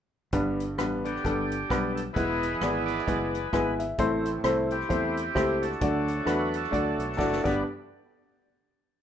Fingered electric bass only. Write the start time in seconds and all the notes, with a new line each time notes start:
0.33 G1
0.79 A1
1.24 G1
1.70 B1
2.16 E1
2.61 G#1
3.08 F#1
3.53 G#1
3.98 A1
4.44 C2
4.90 E2
5.35 C#2
5.82 D2
6.26 E2
6.73 D2
6.98 B1
7.18 F#1
7.45 G1